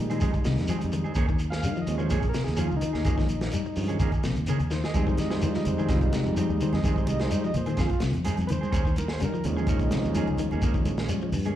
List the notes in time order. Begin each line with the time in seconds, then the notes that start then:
0.00 A#2 G3 G#3 D#4
0.10 D#3 G#3 C4 G#4, closed hi-hat, shekere
0.21 F2 D#3 G#3 G#4, muted clean electric guitar stroke, kick, closed hi-hat, shekere
0.33 muted clean electric guitar stroke, kick, closed hi-hat, shekere
0.45 C2 C3, muted clean electric guitar stroke, snare, closed hi-hat, shekere
0.57 F2, snare, closed hi-hat, shekere
0.68 D#3 F3 G#3 C4 G#4, closed hi-hat, shekere
0.81 F2, muted clean electric guitar stroke, closed hi-hat, shekere
0.92 D#3, muted clean electric guitar stroke, closed hi-hat, shekere
1.04 G#3 C4 G#4, shekere
1.15 D#2 D#3 A#3 C#4 G#4, kick, closed hi-hat, shekere
1.28 D#3, muted clean electric guitar stroke, kick, shekere
1.39 muted clean electric guitar stroke, closed hi-hat, shekere
1.50 A#3 C#4 G#4 F5, snare, shekere
1.62 D#3 G3, muted clean electric guitar stroke, closed hi-hat, shekere
1.76 F3, shekere
1.82 D#5
1.86 D#2 F3 G#3 C#4, muted clean electric guitar stroke, closed hi-hat, shekere
1.98 D#3 A#3 C#4 G#4 C5, shekere
2.10 A#1 D#3 A#3 C#4 G#4, kick, closed hi-hat, shekere
2.14 G#4
2.22 muted clean electric guitar stroke, kick, closed hi-hat, shekere
2.29 A#4
2.34 C3, muted clean electric guitar stroke, snare, closed hi-hat, shekere
2.44 D#2 G#4, snare, shekere
2.56 D#3 F3 A#3 C#4 G#4, closed hi-hat, shekere
2.61 F4
2.70 C#2, muted clean electric guitar stroke, shekere
2.76 D#4
2.81 D#3, muted clean electric guitar stroke, closed hi-hat, shekere
2.93 D#2 A#3 C#4 G#4, snare, shekere
3.05 D#3 F3 G#3 A#3 C#4 G#4, muted clean electric guitar stroke, kick, closed hi-hat, shekere
3.18 D#3, muted clean electric guitar stroke, kick, snare, shekere
3.28 A#1, muted clean electric guitar stroke, closed hi-hat, shekere
3.41 A#3 C#4, muted clean electric guitar stroke, snare, closed hi-hat, shekere
3.52 G3, muted clean electric guitar stroke, closed hi-hat, shekere
3.66 muted clean electric guitar stroke, shekere
3.76 G2 F3 G#3 C#4, muted clean electric guitar stroke, open hi-hat, shekere
3.88 D#3 A#3 C#4 G#4, closed hi-hat, shekere
4.00 D#2 D#3 A#3 C#4 G#4, kick, closed hi-hat, shekere
4.12 muted clean electric guitar stroke, kick, closed hi-hat, shekere
4.23 A#1 C3, muted clean electric guitar stroke, snare, closed hi-hat, shekere
4.36 D#2, closed hi-hat, shekere
4.46 C#3 D#3 A#3 C#4 G#4, closed hi-hat, shekere
4.60 D#2, muted clean electric guitar stroke, closed hi-hat, shekere
4.71 D#3 C5, muted clean electric guitar stroke, snare, shekere
4.84 A#3 G#4 D#5, snare, shekere
4.94 F2 D#3 G3 G#3 C4 D#4 G#4 C5, kick, closed hi-hat, shekere
5.07 D#3 C5, muted clean electric guitar stroke, kick, shekere
5.17 D#5, muted clean electric guitar stroke, snare, closed hi-hat, high conga, shekere
5.30 G#3 C4 G#4 C5, snare, shekere
5.41 F3 G3 C5, muted clean electric guitar stroke, closed hi-hat, high conga, low conga, shekere
5.54 F3 D#5, snare, shekere
5.65 F2 C5, muted clean electric guitar stroke, closed hi-hat, high conga, low conga, shekere
5.78 D#3 G#3 C4 G#4, shekere
5.88 C2 D#3 G#3 C4 F4, muted clean electric guitar stroke, kick, snare, closed hi-hat, high conga, low conga, shekere
6.01 muted clean electric guitar stroke, kick, closed hi-hat, shekere
6.13 C3, muted clean electric guitar stroke, snare, closed hi-hat, high conga, shekere
6.26 F2, shekere
6.36 D#3 F3 C4, muted clean electric guitar stroke, closed hi-hat, high conga, shekere
6.49 D#2, muted clean electric guitar stroke, shekere
6.61 D#3 C5, muted clean electric guitar stroke, closed hi-hat, low conga, shekere
6.73 F2 G#3 C4 G#4 D#5, snare, high conga, shekere
6.84 D#3 G3 G#3 C4 D#4 G#4 C5, kick, closed hi-hat, high conga, shekere
6.96 D#3 C5, muted clean electric guitar stroke, kick, shekere
7.07 C2 D#5, muted clean electric guitar stroke, closed hi-hat, high conga, shekere
7.19 G#3 C4 G#4 C5, snare, closed hi-hat, shekere
7.30 G3 C5, muted clean electric guitar stroke, closed hi-hat, high conga, shekere
7.44 F3 D#5, shekere
7.54 A#2 C5, muted clean electric guitar stroke, closed hi-hat, high conga, low conga, shekere
7.66 D#3 G#3 C4 G#4, closed hi-hat, shekere
7.77 F2 D#3 G#3 C4 F4 G#4, kick, snare, closed hi-hat, high conga, shekere
7.89 muted clean electric guitar stroke, kick, closed hi-hat, shekere
8.00 C2 C3, muted clean electric guitar stroke, snare, closed hi-hat, high conga, shekere
8.13 F2, closed hi-hat, shekere
8.24 D#3 G#3 C4 G#4, muted clean electric guitar stroke, closed hi-hat, high conga, shekere
8.37 F2, muted clean electric guitar stroke, closed hi-hat, high conga, shekere
8.47 D#3 B4, muted clean electric guitar stroke, closed hi-hat, low conga
8.51 C5, shekere
8.61 G#3 C4 G#4, high conga, shekere
8.72 D#2 D#3 C#4 G#4, muted clean electric guitar stroke, kick, closed hi-hat, high conga, shekere
8.85 D#3, muted clean electric guitar stroke, kick, shekere
8.96 A#4, muted clean electric guitar stroke, closed hi-hat, high conga, shekere
9.08 A#3 C#4 G#4, snare, shekere
9.13 C5
9.20 D#3 G3 A#4, muted clean electric guitar stroke, closed hi-hat, high conga, shekere
9.34 F3, shekere
9.44 D#2 F3 G#3 C#4 D#4, muted clean electric guitar stroke, closed hi-hat, low conga, shekere
9.57 D#3 C#4 G#4, shekere
9.67 A#1 D#3 A#3 C#4, muted clean electric guitar stroke, kick, closed hi-hat, high conga, low conga, shekere
9.79 muted clean electric guitar stroke, kick, closed hi-hat, shekere
9.91 C3, muted clean electric guitar stroke, snare, closed hi-hat, high conga, shekere
10.05 D#2, shekere
10.15 D#3 F3 A#3 C#4 G#4, closed hi-hat, high conga, shekere
10.27 C#2, muted clean electric guitar stroke, high conga, shekere
10.38 D#3 F3 G#3 C#4, muted clean electric guitar stroke, closed hi-hat, low conga, shekere
10.51 D#2 A#3 C#4 G#4, high conga, shekere
10.62 D#3 F3 G#3 A#3 C#4, muted clean electric guitar stroke, kick, closed hi-hat, shekere
10.74 D#3, muted clean electric guitar stroke, kick, shekere
10.85 A#1, muted clean electric guitar stroke, closed hi-hat, high conga, shekere
10.98 A#3 C#4 G#4, snare, closed hi-hat, shekere
11.08 G3, muted clean electric guitar stroke, closed hi-hat, high conga, shekere
11.21 F3, shekere
11.32 G2, muted clean electric guitar stroke, open hi-hat, high conga, low conga, shekere
11.45 G#3 A#3 C#4 G#4, closed hi-hat, shekere